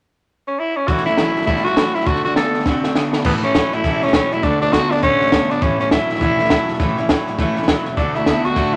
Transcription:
0.48 tenor saxophone C#4
0.59 tenor saxophone E4
0.76 tenor saxophone C#4
0.88 steel-string acoustic guitar A2 E3 A3 C#4 E4, tenor saxophone F#4, kick, snare
0.97 snare
1.06 steel-string acoustic guitar A3 C#4 E4, tenor saxophone E4, snare
1.17 clean electric guitar A2 F#3, steel-string acoustic guitar E3 A3 C#4 E4, snare, hi-hat pedal
1.36 steel-string acoustic guitar A3 C#4 E4, snare
1.42 snare
1.46 steel-string acoustic guitar A2 E3 A3 C#4 E4, clean electric guitar G3, tenor saxophone E4, kick, snare
1.57 snare
1.64 steel-string acoustic guitar A3 C#4 E4, tenor saxophone F#4, snare
1.76 clean electric guitar A2 F#3, steel-string acoustic guitar E3 A3 C#4 E4, snare, hi-hat pedal
1.95 steel-string acoustic guitar A3 C#4 E4, tenor saxophone E4, snare
2.01 snare
2.06 steel-string acoustic guitar D3 A3 D4 F#4, tenor saxophone F#4, kick, snare
2.15 snare
2.24 steel-string acoustic guitar A3 D4 F#4, tenor saxophone F#4, snare
2.36 steel-string acoustic guitar D3 A3 D4 F#4, clean electric guitar B3, tenor saxophone A4, snare, hi-hat pedal
2.54 steel-string acoustic guitar A3 D4 F#4, snare
2.60 snare
2.66 steel-string acoustic guitar D3 A3 D4 F#4, clean electric guitar C4, kick, snare
2.84 steel-string acoustic guitar A3 D4 F#4, snare
2.95 steel-string acoustic guitar D3 A3 D4 F#4, clean electric guitar B3, snare, hi-hat pedal
3.13 steel-string acoustic guitar A3 D4 F#4, snare
3.24 double bass A1, steel-string acoustic guitar A2 E3 A3 C#4 E4, tenor saxophone B3, kick, snare, crash
3.43 steel-string acoustic guitar A3 C#4 E4, tenor saxophone C#4, snare
3.54 clean electric guitar A2 F#3, steel-string acoustic guitar E3 A3 C#4 E4, kick, snare, hi-hat pedal
3.72 double bass A1, steel-string acoustic guitar A3 C#4 E4, tenor saxophone E4, snare
3.84 double bass E1, steel-string acoustic guitar A2 E3 A3 C#4 E4, kick, snare
4.02 steel-string acoustic guitar A3 C#4 E4, tenor saxophone C#4, snare
4.07 snare
4.13 clean electric guitar A2 F#3, steel-string acoustic guitar E3 A3 C#4 E4, tenor saxophone C#4, kick, snare, hi-hat pedal
4.31 double bass E1, steel-string acoustic guitar A3 C#4 E4, tenor saxophone E4, snare
4.43 double bass D2, steel-string acoustic guitar D3 A3 D4 F#4, tenor saxophone D4, kick, snare
4.61 steel-string acoustic guitar A3 D4 F#4, tenor saxophone D4, snare
4.72 steel-string acoustic guitar D3 A3 D4 F#4, clean electric guitar B3, tenor saxophone F#4, kick, snare, hi-hat pedal
4.90 double bass D2, steel-string acoustic guitar A3 D4 F#4, tenor saxophone D4, snare
4.97 snare
5.02 double bass A1, steel-string acoustic guitar D3 A3 D4 F#4, tenor saxophone C#4, kick, snare
5.20 steel-string acoustic guitar A3 D4 F#4, snare
5.26 snare
5.32 steel-string acoustic guitar D3 A3 D4 F#4, clean electric guitar B3, kick, snare, hi-hat pedal
5.50 double bass A1, steel-string acoustic guitar A3 D4 F#4, tenor saxophone D4, snare
5.61 double bass A1, steel-string acoustic guitar A2 E3 A3 C#4 E4, tenor saxophone C#4, kick, snare
5.80 steel-string acoustic guitar A3 C#4 E4, tenor saxophone C#4, snare
5.91 clean electric guitar A2 F#3, steel-string acoustic guitar E3 A3 C#4 E4, tenor saxophone E4, kick, snare, hi-hat pedal
6.09 double bass A1, steel-string acoustic guitar A3 C#4 E4, snare
6.15 snare
6.21 double bass E1, steel-string acoustic guitar A2 E3 A3 C#4 E4, kick, snare
6.39 steel-string acoustic guitar A3 C#4 E4, snare
6.45 snare
6.50 clean electric guitar A2 F#3, steel-string acoustic guitar E3 A3 C#4 E4, kick, snare, hi-hat pedal
6.68 double bass E1, steel-string acoustic guitar A3 C#4 E4, snare
6.74 snare
6.79 double bass A1, steel-string acoustic guitar A2 E3 A3 C#4 E4, kick, snare
6.97 steel-string acoustic guitar A3 C#4 E4, snare
7.09 clean electric guitar A2 F#3, steel-string acoustic guitar E3 A3 C#4 E4, kick, snare, hi-hat pedal
7.27 double bass A1, steel-string acoustic guitar A3 C#4 E4, snare
7.38 double bass E1, steel-string acoustic guitar A2 E3 A3 C#4 E4, kick, snare
7.56 steel-string acoustic guitar A3 C#4 E4, snare
7.62 snare
7.68 clean electric guitar A2 F#3, steel-string acoustic guitar E3 A3 C#4 E4, kick, snare, hi-hat pedal
7.85 double bass E1, steel-string acoustic guitar A3 C#4 E4, snare
7.97 double bass D2, steel-string acoustic guitar D3 A3 D4 F#4, tenor saxophone D4, kick, snare
8.15 steel-string acoustic guitar A3 D4 F#4, tenor saxophone E4, snare
8.26 steel-string acoustic guitar D3 A3 D4 F#4, clean electric guitar B3, kick, snare, hi-hat pedal
8.44 double bass D2, steel-string acoustic guitar A3 D4 F#4, tenor saxophone F#4, snare
8.56 double bass A1, steel-string acoustic guitar D3 A3 D4 F#4, kick, snare
8.73 steel-string acoustic guitar F#4

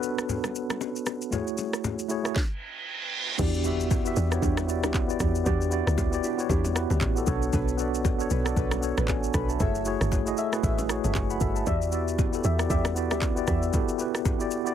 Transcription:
Already playing: tine electric piano B3 D4 F#4 A4 B4 C#5
0.03 shaker
0.18 cross-stick, shaker
0.29 low conga, shaker
0.44 cross-stick, low bongo, shaker
0.56 shaker
0.70 cross-stick, low bongo, shaker
0.81 high bongo, shaker
0.96 shaker
1.06 cross-stick, high bongo, shaker
1.22 shaker
1.31 tine electric piano A3 E4 F#4 G#4 C#5, low conga, shaker
1.47 shaker
1.58 low bongo, shaker
1.73 cross-stick, shaker
1.84 high bongo, low conga, shaker
1.99 shaker
2.08 tine electric piano A3 E4 F#4 G#4 C#5, shaker
2.23 tine electric piano A3 E4 F#4 G#4 C#5, cross-stick, shaker
2.36 kick, snare, reverse cymbal
3.38 log drum bass E2, tine electric piano B3 E4 F#4 G4 D5, synth stab D4 E4 G4, kick, crash, impact, low conga, shaker
3.54 shaker
3.64 tine electric piano B3 E4 F#4 G4 E5, shaker
3.80 shaker
3.91 kick, high bongo, low conga, shaker
4.04 tine electric piano B3 E4 F#4 G4 E5, shaker
4.16 log drum bass E2, synth stab D4 E4 G4, shaker
4.30 tine electric piano B3 E4 F#4 G4 C#5, cross-stick, shaker
4.42 log drum bass E2, synth stab D4 E4 G4, kick, low conga, shaker
4.57 cross-stick, low bongo, shaker
4.67 tine electric piano B3 E4 F#4 G4 D5, shaker
4.83 log drum bass D2, synth stab D4 E4 G4, cross-stick, low bongo, shaker
4.94 kick, clap, high bongo, shaker
5.07 tine electric piano B3 E4 F#4 G4 D5, shaker
5.20 log drum bass E2, synth stab D4 E4 G4, kick, cross-stick, shaker
5.35 shaker
5.44 log drum bass E2, tine electric piano B3 E4 F#4 G4 D5, synth stab D4 E4 G4, kick, low conga, shaker
5.61 shaker
5.70 tine electric piano B3 E4 F#4 G4 D5, shaker
5.87 log drum bass D2, cross-stick, shaker
5.98 kick, high bongo, low conga, shaker
6.11 tine electric piano B3 E4 F#4 G4 D5, shaker
6.24 synth stab D4 E4 G4, shaker
6.37 tine electric piano B3 E4 F#4 G4 C#5, shaker
6.49 log drum bass E2, synth stab D4 E4 G4, kick, low conga, shaker
6.64 low bongo, shaker
6.74 tine electric piano B3 E4 F#4 G4 B4, cross-stick, shaker
6.90 log drum bass D2, synth stab D4 E4 G4, low bongo, shaker
7.01 log drum bass A1, kick, clap, high bongo, shaker
7.15 tine electric piano B3 E4 F#4 G4 A4, shaker
7.26 log drum bass B1, tine electric piano B3 D4 F#4 A4 C#5, synth stab D4 A4 B4, kick, shaker
7.42 shaker
7.53 log drum bass B1, synth stab D4 A4 B4, kick, low conga, shaker
7.68 shaker
7.77 tine electric piano B3 D4 F#4 A4 D5, shaker
7.95 shaker
8.05 kick, high bongo, low conga, shaker
8.18 tine electric piano B3 D4 F#4 A4 C#5, shaker
8.31 log drum bass B1, synth stab D4 A4 B4, shaker
8.44 tine electric piano B3 D4 F#4 A4 D5, cross-stick, shaker
8.56 log drum bass B1, synth stab D4 A4 B4, kick, low conga, shaker
8.71 cross-stick, low bongo, shaker
8.81 tine electric piano B3 D4 F#4 A4 C#5, shaker
8.97 log drum bass A1, synth stab D4 A4 B4, cross-stick, low bongo, shaker
9.08 tine electric piano D5 G#5, kick, clap, high bongo, shaker
9.23 shaker
9.34 log drum bass B1, synth stab D4 A4 B4, tine electric piano F#5 B5, kick, cross-stick, shaker
9.49 tine electric piano E5 A5, shaker
9.59 log drum bass F#1, tine electric piano A3 E4 F#4 G#4 C#5, synth stab F#4 A4 E5, kick, low conga, shaker
9.75 shaker
9.85 tine electric piano A3 E4 F#4 G#4 C#5, shaker
10.01 log drum bass G1, cross-stick, shaker
10.12 kick, high bongo, low conga, shaker
10.25 tine electric piano A3 E4 F#4 G#4 D#5, shaker
10.37 synth stab F#4 A4 E5, shaker
10.51 tine electric piano A3 E4 F#4 G#4 B4, cross-stick, shaker
10.63 log drum bass A1, synth stab F#4 A4 E5, kick, low conga, shaker
10.78 low bongo, shaker
10.88 tine electric piano A3 E4 F#4 G#4 C#5, cross-stick, shaker
11.04 log drum bass G1, synth stab F#4 A4 E5, low bongo, shaker
11.15 log drum bass F#1, tine electric piano G#5 C#6, kick, clap, high bongo, shaker
11.30 tine electric piano F#5 B5, shaker
11.41 log drum bass G1, synth stab F#4 A4 E5, kick, shaker
11.56 tine electric piano E5 A5, shaker
11.65 log drum bass E2, tine electric piano B3 D5, synth stab G4 D5 E5, kick, low conga, shaker
11.82 shaker
11.91 tine electric piano B3 E4 F#4 G4 D5, shaker
12.08 shaker
12.19 kick, high bongo, low conga, shaker
12.32 tine electric piano B3 E4 F#4 G4 A4, shaker
12.44 log drum bass E2, synth stab G4 D5 E5, shaker
12.58 tine electric piano B3 E4 F#4 G4 D5, cross-stick, shaker
12.70 log drum bass E2, synth stab G4 D5 E5, kick, low conga, shaker
12.85 cross-stick, low bongo, shaker
12.95 tine electric piano B3 E4 F#4 G4 D5, shaker
13.11 log drum bass D2, synth stab G4 D5 E5, cross-stick, low bongo, shaker
13.22 kick, clap, high bongo, shaker
13.35 tine electric piano B3 E4 F#4 G4 D5, shaker
13.47 log drum bass E2, synth stab G4 D5 E5, kick, cross-stick, shaker
13.63 shaker
13.72 tine electric piano B3 E4 F#4 G4 A4, kick, low conga, shaker
13.89 shaker
13.98 tine electric piano B3 E4 F#4 G4 B4, shaker
14.15 cross-stick, shaker
14.25 kick, high bongo, low conga, shaker
14.39 tine electric piano B3 E4 F#4 G4 D5, shaker
14.51 shaker
14.64 tine electric piano B3 E4 F#4 G4 D5, shaker

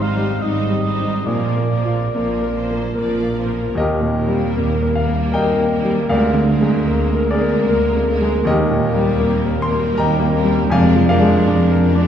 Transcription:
Already playing: double bass section G#1, cello section G#2, grand piano G#2 G3 D#4 C5
0.01 viola section G3, violin section D#4 C5, cor anglais F5
0.16 grand piano G3
0.41 double bass section G#1, cello section G#2, viola section G3, violin section D#4 C5, grand piano D#4, cor anglais D#5
0.70 grand piano G3
0.83 viola section G3, violin section D#4 C5
0.99 grand piano D#4
1.26 double bass section A#1, cello section A#2, grand piano A#2, viola section F3, violin section A#3 A#4, cor anglais D5
1.56 grand piano A#3
1.71 viola section F3, violin section A#3 A#4
1.85 grand piano F4
2.13 double bass section A#1, cello section A#2, viola section F3, violin section A#3 A#4, grand piano A#3
2.42 grand piano A#4
2.55 viola section F3, violin section A#3 C5
2.71 grand piano A#3
2.95 double bass section A#1, cello section A#2, viola section F3, violin section A#3 D5, grand piano A#4
3.21 grand piano A#3
3.37 viola section F3, violin section A#3 A#4
3.47 grand piano A#4
3.75 grand piano D#2 A#4 D#5, cello section D#2, double bass section D#2
3.79 grand piano G4
4.01 grand piano A#2
4.17 viola section G3, violin section A#3 A#4
4.27 grand piano G3
4.56 cello section D#2, double bass section D#2, grand piano A#3
4.83 grand piano A#4
4.95 viola section G3, violin section A#3 A#4, grand piano F5
5.07 grand piano A#3
5.32 double bass section D#2, cello section D#2, grand piano A#4 D#5 G5
5.57 grand piano A#3
5.72 viola section G3, violin section A#3 A#4
5.83 grand piano G3
6.09 cello section D2, double bass section D2, grand piano D2 A#4 D5 F5, viola section G#3, violin section A#3 A#4
6.34 grand piano D3
6.49 viola section G#3, violin section A#3 A#4
6.61 grand piano G#3
6.87 cello section D2, double bass section D2, grand piano A#3
7.15 grand piano A#4
7.29 viola section G#3, violin section A#3 A#4, grand piano G#4 A#4 D5
7.41 grand piano A#3
7.68 double bass section D2, cello section D2, grand piano A#4
7.95 grand piano A#3
8.08 viola section G#3, violin section A#3 A#4
8.21 grand piano G#3
8.45 grand piano D#2 G4 A#4 D#5, cello section D#2, double bass section D#2, timpani D#3
8.70 grand piano A#2
8.84 viola section G3, violin section A#3 A#4
8.95 grand piano G3
9.20 double bass section D#2, cello section D#2, grand piano A#3
9.46 grand piano A#4
9.60 viola section G3, violin section A#3 A#4, grand piano C6
9.71 grand piano A#3
9.94 double bass section D#2, cello section D#2, grand piano A#4 A#5
9.99 grand piano D#5 G5
10.19 grand piano A#3
10.33 viola section G3, violin section A#3 A#4
10.44 grand piano G3
10.69 double bass section F1, grand piano F2 D5 F5 G#5, cello section F2, viola section G#3, violin section D4 A#4
10.96 grand piano F3
11.07 viola section G#3, violin section D4 A#4, grand piano A#4 D5 F5
11.21 grand piano G#3
11.46 double bass section F1, cello section F2, grand piano D4
11.71 grand piano A#4
11.83 viola section G#3, violin section D4 A#4
11.95 grand piano D4

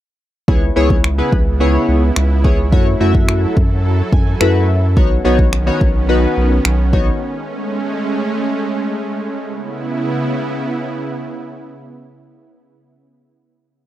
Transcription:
0.48 sub bass C#2, supersaw synth C#3 B3 E4, synth keys B3 E4 G#4 C#5, kick
0.76 sub bass C#2, synth keys B3 E4 G#4 C#5
0.90 kick
1.04 finger snap
1.18 synth keys B3 E4 G#4 B4
1.32 sub bass C#2, kick
1.60 synth keys B3 E4 G#4 C#5
1.88 sub bass C#2
2.16 sub bass C#2, finger snap
2.44 synth keys B3 E4 G#4 C#5, kick
2.72 sub bass F#2, supersaw synth F#3 A4, synth keys A3 E4 F#4 C#5, kick
3.00 sub bass F#2, synth keys A3 E4 F#4 E5
3.14 kick
3.29 finger snap
3.57 sub bass F#2, kick
4.12 sub bass F#2, synth keys G#5, kick
4.40 sub bass F#2, synth keys A3 E4 F#4 B4 E5, finger snap
4.97 sub bass B1, supersaw synth D#3 B3 C#4, synth keys B3 D#4 F#4 C#5, kick
5.25 sub bass B1, synth keys B3 D#4 F#4 C#5
5.39 kick
5.53 finger snap
5.67 synth keys B3 D#4 F#4 C#5
5.81 sub bass B1, kick
6.09 synth keys B3 D#4 F#4 B4
6.37 sub bass B1
6.65 sub bass B1, finger snap
6.93 synth keys B3 D#4 F#4 C#5, kick
7.21 supersaw synth G#3 A3 C#4
9.45 supersaw synth C#3 B3 E4

